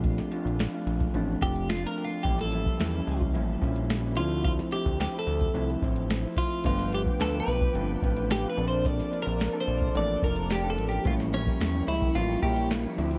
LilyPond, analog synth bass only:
\new Staff \with { instrumentName = "Analog synth bass" } { \clef bass \time 4/4 \key a \phrygian \tempo 4 = 109 bes,,8 r16 bes,,8 r16 bes,,8 a,,8 f,,4 r8 | a,,4 e,8 cis,8 a,,8 bes,,4 d,8~ | d,8 r16 d,8 r16 d,8 c,8 a,,4 r8 | g,,4 d,8 b,,8 g,,8 a,,4 bes,,8~ |
bes,,8 r16 bes,,8 r16 bes,,8 a,,8 f,,4 a,,8 | a,,4 e,8 cis,8 a,,8 bes,,4 d,8 | }